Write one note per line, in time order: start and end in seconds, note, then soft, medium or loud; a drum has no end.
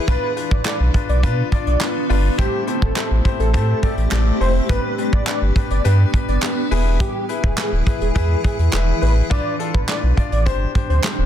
0.08 0.18 B1 loud
0.08 2.36 B3 medium
0.08 2.36 D4 medium
0.08 0.31 D4 loud
0.08 2.36 F4 loud
0.08 0.32 F4 medium
0.08 0.32 B4 loud
0.08 kick loud
0.08 closed hi-hat medium
0.36 0.60 D4 medium
0.36 0.60 F4 medium
0.36 0.60 B4 medium
0.36 closed hi-hat medium
0.51 0.61 A1 medium
0.51 0.63 D5 medium
0.51 kick loud
0.65 0.89 D4 medium
0.65 0.89 F4 medium
0.65 0.89 B4 medium
0.65 0.78 D5 medium
0.65 snare medium
0.65 clap loud
0.65 closed hi-hat medium
0.80 0.90 B1 medium
0.94 1.18 D4 medium
0.94 1.18 F4 medium
0.94 1.18 B4 medium
0.94 kick medium
0.94 closed hi-hat medium
1.09 1.25 B1 medium
1.09 1.21 D5 medium
1.09 closed hi-hat medium
1.23 1.43 B2 loud
1.23 1.47 D4 loud
1.23 1.47 F4 medium
1.23 1.47 B4 loud
1.23 1.36 B4 loud
1.23 kick medium
1.23 closed hi-hat medium
1.52 1.75 D4 medium
1.52 1.76 F4 medium
1.52 1.76 D5 medium
1.52 kick loud
1.52 closed hi-hat medium
1.67 1.77 B1 medium
1.67 1.79 D5 medium
1.67 closed hi-hat medium
1.80 2.04 D4 medium
1.80 2.05 F4 medium
1.80 2.05 B4 medium
1.80 snare loud
1.80 clap medium
1.80 clap loud
1.80 closed hi-hat medium
2.09 2.30 G1 loud
2.09 2.33 D4 medium
2.09 2.33 F4 medium
2.09 2.33 B4 loud
2.09 open hi-hat medium
2.38 2.49 A1 loud
2.38 2.62 A3 loud
2.38 4.67 A3 medium
2.38 2.62 C4 medium
2.38 4.67 C4 medium
2.38 2.62 E4 medium
2.38 2.63 G4 loud
2.38 2.62 G4 medium
2.38 6.67 G4 medium
2.38 2.62 C5 loud
2.38 kick loud
2.38 closed hi-hat medium
2.67 2.91 A3 medium
2.67 2.91 C4 medium
2.67 2.91 E4 medium
2.67 2.91 G4 medium
2.67 2.91 C5 medium
2.67 closed hi-hat medium
2.82 2.92 G1 medium
2.82 2.94 A4 medium
2.82 kick loud
2.96 3.20 A3 medium
2.96 3.20 C4 medium
2.96 3.20 E4 medium
2.96 3.20 G4 medium
2.96 3.09 A4 medium
2.96 3.20 C5 medium
2.96 snare medium
2.96 clap loud
2.96 closed hi-hat medium
3.11 3.21 A1 medium
3.24 3.48 A3 medium
3.24 3.48 C4 medium
3.24 3.48 E4 medium
3.24 3.48 G4 medium
3.24 3.49 C5 medium
3.24 kick medium
3.24 closed hi-hat medium
3.39 3.56 A1 loud
3.39 3.52 A4 medium
3.39 closed hi-hat medium
3.53 3.74 A2 loud
3.53 3.77 A3 loud
3.53 3.77 C4 medium
3.53 3.77 E4 medium
3.53 3.77 G4 medium
3.53 3.78 A4 medium
3.53 3.77 C5 loud
3.53 kick medium
3.53 closed hi-hat medium
3.82 4.06 A3 medium
3.82 4.06 C4 medium
3.82 4.06 E4 medium
3.82 4.06 G4 medium
3.82 3.95 A4 medium
3.82 4.06 D5 medium
3.82 kick loud
3.82 closed hi-hat medium
3.97 4.07 A1 loud
3.97 closed hi-hat medium
4.11 4.32 A1 loud
4.11 4.35 A3 medium
4.11 4.35 C4 medium
4.11 4.35 E4 medium
4.11 4.35 G4 medium
4.11 4.35 D5 loud
4.11 snare loud
4.11 clap medium
4.11 clap loud
4.11 closed hi-hat medium
4.40 4.60 F1 medium
4.40 4.64 A3 medium
4.40 4.64 C4 medium
4.40 4.64 E4 medium
4.40 4.64 G4 medium
4.40 4.53 C5 medium
4.40 4.64 C5 medium
4.40 open hi-hat medium
4.69 4.79 G1 loud
4.69 6.69 B3 medium
4.69 4.93 D4 medium
4.69 6.69 D4 medium
4.69 4.93 G4 medium
4.69 4.94 B4 loud
4.69 4.93 B4 loud
4.69 kick loud
4.69 closed hi-hat medium
4.98 5.22 D4 medium
4.98 5.22 G4 medium
4.98 5.22 B4 medium
4.98 closed hi-hat medium
5.13 5.23 A1 medium
5.13 5.25 D5 medium
5.13 kick loud
5.27 5.50 D4 medium
5.27 5.50 G4 medium
5.27 5.51 B4 medium
5.27 5.39 D5 medium
5.27 snare medium
5.27 clap loud
5.27 closed hi-hat medium
5.42 5.51 G1 medium
5.56 5.79 D4 medium
5.56 5.79 G4 medium
5.56 5.79 B4 medium
5.56 kick medium
5.56 closed hi-hat medium
5.70 5.80 G1 loud
5.70 5.83 D5 medium
5.70 closed hi-hat medium
5.84 6.05 G2 loud
5.84 6.08 D4 loud
5.84 6.08 G4 medium
5.84 5.97 B4 medium
5.84 6.08 B4 loud
5.84 closed hi-hat medium
6.13 6.37 D4 medium
6.13 6.37 G4 medium
6.13 6.37 B4 medium
6.13 kick loud
6.13 closed hi-hat medium
6.28 6.38 G1 loud
6.28 6.40 D5 medium
6.28 closed hi-hat medium
6.42 6.66 D4 medium
6.42 6.66 G4 medium
6.42 6.66 B4 medium
6.42 snare medium
6.42 clap medium
6.42 clap loud
6.42 closed hi-hat medium
6.71 7.01 E1 loud
6.71 9.28 E3 medium
6.71 7.18 E4 medium
6.71 9.28 E4 medium
6.71 7.18 G#4 medium
6.71 9.28 G#4 medium
6.71 9.28 B4 medium
6.71 7.18 B4 loud
6.71 open hi-hat medium
7.00 7.24 G4 loud
7.00 kick loud
7.00 closed hi-hat medium
7.29 7.52 E4 medium
7.29 7.52 G#4 medium
7.29 7.53 B4 medium
7.29 closed hi-hat medium
7.44 7.53 E1 loud
7.44 7.56 G#4 medium
7.44 kick loud
7.57 7.81 E4 medium
7.57 7.81 G#4 medium
7.57 7.70 G#4 medium
7.57 7.81 B4 medium
7.57 snare medium
7.57 clap loud
7.57 closed hi-hat medium
7.72 7.82 D1 loud
7.86 8.10 E4 medium
7.86 8.10 G#4 medium
7.86 8.10 B4 medium
7.86 kick medium
7.86 closed hi-hat medium
8.01 8.11 E1 medium
8.01 8.13 G#4 medium
8.01 closed hi-hat medium
8.15 8.35 E2 loud
8.15 8.39 E4 loud
8.15 8.39 G#4 medium
8.15 8.40 G#4 medium
8.15 8.39 B4 loud
8.15 kick medium
8.15 closed hi-hat medium
8.44 8.68 E4 medium
8.44 8.68 G#4 medium
8.44 8.56 G#4 medium
8.44 8.68 B4 medium
8.44 kick loud
8.44 closed hi-hat medium
8.59 8.69 E2 loud
8.59 closed hi-hat medium
8.72 8.93 E1 loud
8.72 8.96 E4 medium
8.72 8.96 G#4 medium
8.72 8.97 B4 loud
8.72 snare medium
8.72 clap medium
8.72 clap loud
8.72 closed hi-hat medium
9.01 9.22 A1 medium
9.01 9.25 E4 medium
9.01 9.25 G#4 medium
9.01 9.25 B4 medium
9.01 9.14 B4 medium
9.01 open hi-hat medium
9.30 9.41 B1 loud
9.30 9.54 D4 loud
9.30 9.54 F4 medium
9.30 9.54 B4 loud
9.30 9.55 D5 loud
9.30 kick loud
9.30 closed hi-hat medium
9.59 9.83 D4 medium
9.59 9.83 F4 medium
9.59 9.83 A4 medium
9.59 closed hi-hat medium
9.74 9.84 A1 medium
9.74 9.86 B4 medium
9.74 kick loud
9.88 10.12 D4 medium
9.88 10.12 F4 medium
9.88 10.12 B4 medium
9.88 10.01 D5 medium
9.88 snare medium
9.88 clap loud
9.88 closed hi-hat medium
10.03 10.13 B1 medium
10.17 10.41 D4 medium
10.17 10.41 F4 medium
10.17 10.41 D5 medium
10.17 kick medium
10.17 closed hi-hat medium
10.32 10.48 A1 loud
10.32 10.44 D5 medium
10.32 closed hi-hat medium
10.46 10.66 G1 loud
10.46 10.69 D4 loud
10.46 10.70 G4 medium
10.46 10.58 C5 loud
10.46 10.70 C5 loud
10.46 kick medium
10.46 closed hi-hat medium
10.74 10.98 D4 medium
10.74 10.98 G4 medium
10.74 10.99 C5 medium
10.74 kick loud
10.74 closed hi-hat medium
10.89 10.99 D2 loud
10.89 11.02 C5 medium
10.89 closed hi-hat medium
11.04 11.26 D4 medium
11.04 11.26 G4 medium
11.04 11.26 C5 medium
11.04 snare loud
11.04 clap medium
11.04 clap loud
11.04 closed hi-hat medium
11.18 11.26 D1 medium